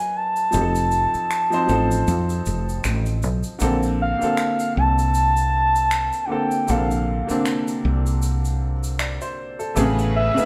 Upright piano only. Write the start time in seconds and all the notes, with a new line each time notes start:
Already playing: F#3 C#4 D#4 A4 A#4 B4
0.51 F3 C4 D#4 G4
0.61 A4
1.50 F3 C4 D#4 C5
1.67 F3 C4 D#4 A4
3.59 D3 A#3 C4
3.63 A4
4.19 D3 A#3 C4
4.23 A4
6.27 D3 A#3 C4
6.32 A4
6.67 C3 A#3 C4 A4
6.73 D3
7.27 D3 A#3 C4 D4
8.99 D5
9.22 C5
9.59 A4
9.75 C3 A3 B3 G#4
9.81 C#3
10.34 C#3 A3 B3
10.39 D#4